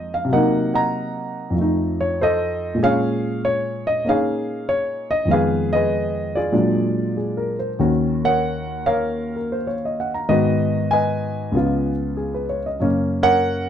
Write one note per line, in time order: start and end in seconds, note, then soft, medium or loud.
0.00 0.28 F2 medium
0.00 0.30 F3 medium
0.00 0.30 G#3 soft
0.00 0.31 A#3 soft
0.00 0.34 D#4 medium
0.00 0.31 F4 soft
0.00 0.28 C5 medium
0.00 0.13 D#5 medium
0.14 0.33 F5 medium
0.25 1.52 C3 medium
0.25 1.54 F#3 soft
0.32 1.56 A#3 medium
0.32 1.58 D#4 medium
0.32 1.53 A#4 medium
0.32 0.73 D#5 medium
0.32 0.72 F#5 medium
0.74 1.53 D#5 medium
0.74 1.52 F#5 medium
0.74 1.53 A#5 medium
1.50 2.78 F2 soft
1.50 2.79 F3 soft
1.58 2.81 A3 soft
1.58 2.83 D#4 medium
2.01 2.20 C#5 medium
2.21 2.78 A4 medium
2.21 2.78 C5 medium
2.21 2.79 D#5 medium
2.75 5.27 A#2 soft
2.75 5.27 G#3 soft
2.83 4.04 C#4 medium
2.83 4.02 G#4 medium
2.83 3.43 C#5 medium
2.83 3.40 F5 loud
3.45 3.86 C#5 medium
3.87 4.07 D#5 medium
4.04 5.29 A#3 soft
4.04 5.30 C#4 soft
4.04 5.31 D#4 soft
4.09 5.28 G#4 medium
4.09 4.67 C#5 medium
4.09 4.71 F5 medium
4.69 5.11 C#5 medium
5.11 5.29 D#5 medium
5.25 6.52 F2 soft
5.25 6.53 D#3 soft
5.25 6.51 G#3 soft
5.31 6.55 B3 medium
5.31 5.74 G#4 medium
5.31 5.74 B4 medium
5.31 5.73 F5 medium
5.73 6.35 G#4 medium
5.73 6.52 B4 medium
5.73 6.36 D#5 medium
6.35 7.56 F4 medium
6.35 7.16 G#4 medium
6.35 7.55 D5 medium
6.52 7.78 A#2 medium
6.52 7.79 F#3 medium
6.52 7.78 G#3 medium
6.52 7.78 D4 medium
7.17 7.55 G#4 soft
7.37 7.69 A#4 soft
7.59 7.91 C5 soft
7.79 10.28 D#2 medium
7.79 10.28 D#3 medium
7.79 10.29 C#4 soft
7.79 10.29 F#4 medium
8.25 8.85 A#4 medium
8.25 8.85 C#5 medium
8.25 8.87 F#5 medium
8.86 9.35 A#4 medium
8.86 9.66 C#5 medium
8.86 10.34 F5 medium
9.36 9.55 A#4 soft
9.52 9.73 C5 soft
9.67 9.95 C#5 medium
9.85 10.10 D#5 medium
10.00 10.18 F#5 medium
10.14 10.35 A#5 soft
10.29 11.53 G#2 medium
10.29 11.53 D#3 medium
10.29 11.53 B3 medium
10.29 11.54 F#4 medium
10.29 10.91 B4 medium
10.29 10.92 D#5 medium
10.91 11.91 B4 medium
10.91 11.91 D#5 medium
10.91 11.90 G#5 medium
11.52 12.77 C#2 medium
11.52 12.78 C#3 soft
11.52 12.78 B3 medium
11.57 12.79 F4 medium
12.17 12.45 G#4 soft
12.34 12.59 B4 soft
12.49 12.67 C#5 medium
12.66 12.86 D#5 soft
12.80 13.69 F#2 medium
12.80 13.69 C#3 soft
12.80 13.69 A#3 medium
12.80 13.69 C#4 medium
13.23 13.69 A#4 medium
13.23 13.69 C#5 medium
13.23 13.69 F#5 loud